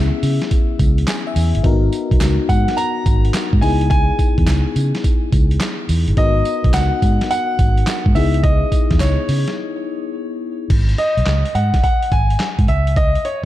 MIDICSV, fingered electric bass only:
0, 0, Header, 1, 2, 480
1, 0, Start_track
1, 0, Tempo, 566038
1, 1394, Time_signature, 4, 2, 24, 8
1, 11406, End_track
2, 0, Start_track
2, 0, Title_t, "Fingered electric bass"
2, 0, Program_c, 0, 33
2, 0, Note_on_c, 0, 37, 103
2, 85, Note_off_c, 0, 37, 0
2, 193, Note_on_c, 0, 49, 93
2, 325, Note_off_c, 0, 49, 0
2, 674, Note_on_c, 0, 37, 98
2, 871, Note_off_c, 0, 37, 0
2, 1152, Note_on_c, 0, 40, 97
2, 1284, Note_off_c, 0, 40, 0
2, 1312, Note_on_c, 0, 31, 87
2, 1379, Note_off_c, 0, 31, 0
2, 1392, Note_on_c, 0, 32, 114
2, 1590, Note_off_c, 0, 32, 0
2, 1793, Note_on_c, 0, 35, 90
2, 1859, Note_off_c, 0, 35, 0
2, 1872, Note_on_c, 0, 37, 106
2, 2004, Note_off_c, 0, 37, 0
2, 2114, Note_on_c, 0, 44, 112
2, 2245, Note_off_c, 0, 44, 0
2, 2595, Note_on_c, 0, 32, 86
2, 2792, Note_off_c, 0, 32, 0
2, 2993, Note_on_c, 0, 44, 85
2, 3059, Note_off_c, 0, 44, 0
2, 3074, Note_on_c, 0, 37, 98
2, 3468, Note_off_c, 0, 37, 0
2, 3714, Note_on_c, 0, 40, 90
2, 3780, Note_off_c, 0, 40, 0
2, 3794, Note_on_c, 0, 37, 104
2, 3925, Note_off_c, 0, 37, 0
2, 4034, Note_on_c, 0, 49, 97
2, 4165, Note_off_c, 0, 49, 0
2, 4516, Note_on_c, 0, 37, 91
2, 4713, Note_off_c, 0, 37, 0
2, 4996, Note_on_c, 0, 40, 89
2, 5126, Note_off_c, 0, 40, 0
2, 5155, Note_on_c, 0, 31, 94
2, 5220, Note_off_c, 0, 31, 0
2, 5234, Note_on_c, 0, 32, 119
2, 5431, Note_off_c, 0, 32, 0
2, 5634, Note_on_c, 0, 35, 89
2, 5700, Note_off_c, 0, 35, 0
2, 5716, Note_on_c, 0, 37, 103
2, 5846, Note_off_c, 0, 37, 0
2, 5956, Note_on_c, 0, 44, 117
2, 6086, Note_off_c, 0, 44, 0
2, 6436, Note_on_c, 0, 32, 95
2, 6632, Note_off_c, 0, 32, 0
2, 6835, Note_on_c, 0, 44, 87
2, 6900, Note_off_c, 0, 44, 0
2, 6916, Note_on_c, 0, 37, 107
2, 7309, Note_off_c, 0, 37, 0
2, 7554, Note_on_c, 0, 40, 89
2, 7620, Note_off_c, 0, 40, 0
2, 7635, Note_on_c, 0, 37, 105
2, 7766, Note_off_c, 0, 37, 0
2, 7875, Note_on_c, 0, 49, 97
2, 8006, Note_off_c, 0, 49, 0
2, 9074, Note_on_c, 0, 32, 106
2, 9271, Note_off_c, 0, 32, 0
2, 9474, Note_on_c, 0, 35, 88
2, 9540, Note_off_c, 0, 35, 0
2, 9554, Note_on_c, 0, 37, 98
2, 9685, Note_off_c, 0, 37, 0
2, 9793, Note_on_c, 0, 44, 113
2, 9925, Note_off_c, 0, 44, 0
2, 10275, Note_on_c, 0, 32, 85
2, 10472, Note_off_c, 0, 32, 0
2, 10673, Note_on_c, 0, 44, 84
2, 10739, Note_off_c, 0, 44, 0
2, 10753, Note_on_c, 0, 37, 101
2, 11147, Note_off_c, 0, 37, 0
2, 11406, End_track
0, 0, End_of_file